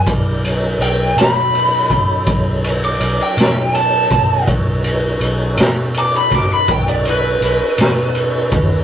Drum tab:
RD |xxxxxxxxxxxx|xxxxxxxxxxxx|
SD |---o-----o--|---o-o---o--|
BD |o----oo----o|o----oo----o|